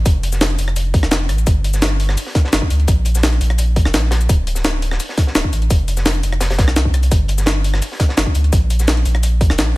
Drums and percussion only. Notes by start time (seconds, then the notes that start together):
0.05 kick, closed hi-hat, cabasa
0.23 closed hi-hat, cabasa
0.32 snare, closed hi-hat, cabasa
0.41 snare, closed hi-hat, cabasa
0.50 closed hi-hat
0.59 closed hi-hat, cabasa
0.68 cross-stick
0.76 closed hi-hat, cabasa
0.94 kick, closed hi-hat
1.03 cross-stick, snare
1.11 snare, closed hi-hat, cabasa
1.29 cross-stick, closed hi-hat, cabasa
1.38 closed hi-hat, cabasa
1.47 kick, closed hi-hat, cabasa
1.64 closed hi-hat
1.74 snare, closed hi-hat, cabasa
1.82 snare, closed hi-hat, cabasa
2.00 closed hi-hat
2.09 cross-stick, snare
2.17 closed hi-hat, open hi-hat, cabasa
2.27 snare
2.35 kick, snare, closed hi-hat
2.45 snare
2.53 snare, closed hi-hat, cabasa
2.62 kick
2.70 closed hi-hat, cabasa
2.80 closed hi-hat
2.88 kick, closed hi-hat, cabasa
3.05 closed hi-hat, cabasa
3.15 snare, closed hi-hat, cabasa
3.23 snare, closed hi-hat, cabasa
3.32 closed hi-hat
3.41 closed hi-hat, cabasa
3.50 cross-stick
3.58 closed hi-hat, cabasa
3.76 kick, closed hi-hat
3.85 cross-stick, snare
3.94 snare, closed hi-hat, cabasa
4.11 cross-stick, snare, closed hi-hat, cabasa
4.21 closed hi-hat, cabasa
4.29 kick, closed hi-hat, cabasa
4.47 closed hi-hat
4.55 snare, closed hi-hat, cabasa
4.65 snare, closed hi-hat, cabasa
4.82 closed hi-hat
4.91 cross-stick, snare
5.00 closed hi-hat, open hi-hat, cabasa
5.09 snare
5.18 kick, snare, closed hi-hat
5.27 snare
5.35 snare, closed hi-hat, cabasa
5.44 kick
5.53 closed hi-hat, cabasa
5.62 closed hi-hat
5.70 kick, closed hi-hat, cabasa
5.88 closed hi-hat, cabasa
5.97 snare, closed hi-hat, cabasa
6.06 snare, closed hi-hat, cabasa
6.15 closed hi-hat
6.23 closed hi-hat, cabasa
6.33 cross-stick
6.41 snare, closed hi-hat, cabasa
6.50 snare, closed hi-hat
6.58 kick, snare, closed hi-hat
6.68 cross-stick, snare
6.76 snare, closed hi-hat, cabasa
6.85 kick
6.94 cross-stick, closed hi-hat, cabasa
7.03 closed hi-hat, cabasa
7.12 kick, closed hi-hat, cabasa
7.28 closed hi-hat
7.38 snare, closed hi-hat, cabasa
7.46 snare, closed hi-hat, cabasa
7.64 closed hi-hat
7.74 cross-stick, snare
7.82 closed hi-hat, open hi-hat, cabasa
7.92 snare
8.00 kick, snare, closed hi-hat
8.09 snare
8.17 snare, closed hi-hat, cabasa
8.26 kick
8.35 closed hi-hat, cabasa
8.44 closed hi-hat
8.53 kick, closed hi-hat, cabasa
8.70 closed hi-hat, cabasa
8.79 snare, closed hi-hat, cabasa
8.87 snare, closed hi-hat, cabasa
8.97 closed hi-hat
9.05 closed hi-hat, cabasa
9.15 cross-stick
9.23 closed hi-hat, cabasa
9.41 kick, closed hi-hat
9.50 cross-stick, snare
9.58 snare, closed hi-hat, cabasa